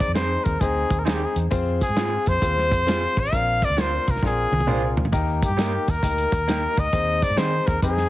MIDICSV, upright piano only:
0, 0, Header, 1, 2, 480
1, 0, Start_track
1, 0, Key_signature, -3, "major"
1, 0, Tempo, 450789
1, 1616, Time_signature, 4, 2, 24, 8
1, 8614, End_track
2, 0, Start_track
2, 0, Title_t, "Upright piano"
2, 0, Program_c, 0, 0
2, 162, Note_on_c, 0, 60, 65
2, 163, Note_on_c, 0, 63, 62
2, 165, Note_on_c, 0, 68, 60
2, 168, Note_on_c, 0, 71, 59
2, 221, Note_on_c, 0, 72, 71
2, 246, Note_off_c, 0, 71, 0
2, 552, Note_off_c, 0, 60, 0
2, 552, Note_off_c, 0, 63, 0
2, 553, Note_off_c, 0, 68, 0
2, 581, Note_off_c, 0, 72, 0
2, 653, Note_on_c, 0, 60, 71
2, 656, Note_on_c, 0, 63, 63
2, 657, Note_on_c, 0, 72, 78
2, 658, Note_on_c, 0, 68, 60
2, 1038, Note_off_c, 0, 60, 0
2, 1040, Note_off_c, 0, 63, 0
2, 1040, Note_off_c, 0, 68, 0
2, 1040, Note_off_c, 0, 72, 0
2, 1132, Note_on_c, 0, 63, 61
2, 1132, Note_on_c, 0, 72, 68
2, 1135, Note_on_c, 0, 60, 56
2, 1136, Note_on_c, 0, 68, 58
2, 1518, Note_off_c, 0, 63, 0
2, 1518, Note_off_c, 0, 72, 0
2, 1519, Note_off_c, 0, 60, 0
2, 1520, Note_off_c, 0, 68, 0
2, 1604, Note_on_c, 0, 60, 83
2, 1605, Note_on_c, 0, 65, 74
2, 1610, Note_on_c, 0, 68, 75
2, 1610, Note_on_c, 0, 72, 87
2, 1994, Note_off_c, 0, 60, 0
2, 1995, Note_off_c, 0, 65, 0
2, 1997, Note_off_c, 0, 68, 0
2, 1998, Note_off_c, 0, 72, 0
2, 2095, Note_on_c, 0, 68, 67
2, 2096, Note_on_c, 0, 60, 69
2, 2097, Note_on_c, 0, 65, 61
2, 2100, Note_on_c, 0, 72, 68
2, 2480, Note_off_c, 0, 68, 0
2, 2481, Note_off_c, 0, 60, 0
2, 2481, Note_off_c, 0, 65, 0
2, 2483, Note_off_c, 0, 72, 0
2, 2573, Note_on_c, 0, 60, 68
2, 2574, Note_on_c, 0, 65, 62
2, 2574, Note_on_c, 0, 72, 74
2, 2578, Note_on_c, 0, 68, 62
2, 2960, Note_off_c, 0, 60, 0
2, 2960, Note_off_c, 0, 65, 0
2, 2960, Note_off_c, 0, 72, 0
2, 2962, Note_off_c, 0, 68, 0
2, 3048, Note_on_c, 0, 60, 73
2, 3050, Note_on_c, 0, 68, 62
2, 3053, Note_on_c, 0, 65, 74
2, 3055, Note_on_c, 0, 72, 88
2, 3437, Note_off_c, 0, 60, 0
2, 3438, Note_off_c, 0, 68, 0
2, 3440, Note_off_c, 0, 65, 0
2, 3441, Note_off_c, 0, 72, 0
2, 3534, Note_on_c, 0, 60, 67
2, 3537, Note_on_c, 0, 62, 61
2, 3537, Note_on_c, 0, 65, 63
2, 3538, Note_on_c, 0, 70, 74
2, 3920, Note_off_c, 0, 60, 0
2, 3922, Note_off_c, 0, 62, 0
2, 3922, Note_off_c, 0, 65, 0
2, 3922, Note_off_c, 0, 70, 0
2, 4019, Note_on_c, 0, 65, 67
2, 4022, Note_on_c, 0, 60, 59
2, 4022, Note_on_c, 0, 62, 57
2, 4025, Note_on_c, 0, 70, 68
2, 4403, Note_off_c, 0, 65, 0
2, 4404, Note_off_c, 0, 60, 0
2, 4404, Note_off_c, 0, 62, 0
2, 4405, Note_off_c, 0, 70, 0
2, 4500, Note_on_c, 0, 60, 63
2, 4500, Note_on_c, 0, 62, 60
2, 4501, Note_on_c, 0, 65, 60
2, 4501, Note_on_c, 0, 70, 70
2, 4883, Note_off_c, 0, 60, 0
2, 4883, Note_off_c, 0, 62, 0
2, 4884, Note_off_c, 0, 65, 0
2, 4884, Note_off_c, 0, 70, 0
2, 4970, Note_on_c, 0, 60, 63
2, 4971, Note_on_c, 0, 70, 65
2, 4972, Note_on_c, 0, 62, 56
2, 4975, Note_on_c, 0, 65, 63
2, 5358, Note_off_c, 0, 60, 0
2, 5358, Note_off_c, 0, 70, 0
2, 5359, Note_off_c, 0, 62, 0
2, 5360, Note_off_c, 0, 65, 0
2, 5454, Note_on_c, 0, 63, 76
2, 5456, Note_on_c, 0, 58, 81
2, 5458, Note_on_c, 0, 70, 86
2, 5461, Note_on_c, 0, 67, 78
2, 5840, Note_off_c, 0, 58, 0
2, 5840, Note_off_c, 0, 63, 0
2, 5842, Note_off_c, 0, 70, 0
2, 5843, Note_off_c, 0, 67, 0
2, 5939, Note_on_c, 0, 63, 59
2, 5940, Note_on_c, 0, 67, 57
2, 5941, Note_on_c, 0, 70, 72
2, 5942, Note_on_c, 0, 58, 69
2, 6322, Note_off_c, 0, 63, 0
2, 6322, Note_off_c, 0, 67, 0
2, 6323, Note_off_c, 0, 58, 0
2, 6323, Note_off_c, 0, 70, 0
2, 6419, Note_on_c, 0, 58, 63
2, 6420, Note_on_c, 0, 63, 58
2, 6420, Note_on_c, 0, 70, 71
2, 6422, Note_on_c, 0, 67, 55
2, 6801, Note_off_c, 0, 58, 0
2, 6802, Note_off_c, 0, 63, 0
2, 6802, Note_off_c, 0, 70, 0
2, 6803, Note_off_c, 0, 67, 0
2, 6896, Note_on_c, 0, 58, 73
2, 6896, Note_on_c, 0, 70, 80
2, 6897, Note_on_c, 0, 67, 67
2, 6898, Note_on_c, 0, 63, 74
2, 7279, Note_off_c, 0, 58, 0
2, 7280, Note_off_c, 0, 63, 0
2, 7280, Note_off_c, 0, 67, 0
2, 7280, Note_off_c, 0, 70, 0
2, 7375, Note_on_c, 0, 63, 60
2, 7377, Note_on_c, 0, 60, 65
2, 7379, Note_on_c, 0, 72, 77
2, 7382, Note_on_c, 0, 68, 65
2, 7758, Note_off_c, 0, 63, 0
2, 7759, Note_off_c, 0, 60, 0
2, 7761, Note_off_c, 0, 72, 0
2, 7762, Note_off_c, 0, 68, 0
2, 7852, Note_on_c, 0, 72, 82
2, 7853, Note_on_c, 0, 60, 64
2, 7854, Note_on_c, 0, 63, 62
2, 7854, Note_on_c, 0, 68, 59
2, 8236, Note_off_c, 0, 72, 0
2, 8237, Note_off_c, 0, 60, 0
2, 8238, Note_off_c, 0, 63, 0
2, 8238, Note_off_c, 0, 68, 0
2, 8332, Note_on_c, 0, 60, 67
2, 8334, Note_on_c, 0, 71, 65
2, 8336, Note_on_c, 0, 63, 57
2, 8336, Note_on_c, 0, 68, 58
2, 8395, Note_on_c, 0, 72, 70
2, 8410, Note_off_c, 0, 71, 0
2, 8614, Note_off_c, 0, 60, 0
2, 8614, Note_off_c, 0, 63, 0
2, 8614, Note_off_c, 0, 68, 0
2, 8614, Note_off_c, 0, 72, 0
2, 8614, End_track
0, 0, End_of_file